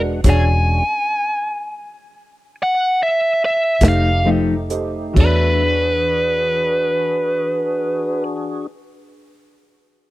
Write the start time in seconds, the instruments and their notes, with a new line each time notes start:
Already playing: fingered electric bass E1, tonewheel organ G#3 D4 F#5, upright piano F#4 G#4 B4 D5
0.24 fingered electric bass E1, clean electric guitar E3 D4 G#4 C#5, tonewheel organ G#3 C#4 D4 F#4, upright piano F#4 G#4 C#5 D5, kick, closed hi-hat, crash
0.30 lead electric guitar G#5
2.63 lead electric guitar F#5
3.03 lead electric guitar E5
3.45 lead electric guitar E5
3.81 fingered electric bass F1, tonewheel organ A3 D#4 G4, clean electric guitar A3 D#4 G4, upright piano G4 A4 C5 D#5, kick, snare, closed hi-hat
3.88 lead electric guitar F5
4.23 clean electric guitar F3 A3 D#4 G4, upright piano G4 A4 C5 D#5
4.69 upright piano G4 A4 C5 D#5, closed hi-hat
5.13 fingered electric bass E2, clean electric guitar E3, tonewheel organ A3 D4 F#4 E5, upright piano F#4 G#4 C#5, kick, crash
5.17 clean electric guitar D4 G#4, lead electric guitar B4, upright piano D5
5.63 tonewheel organ D4 F#4 G#4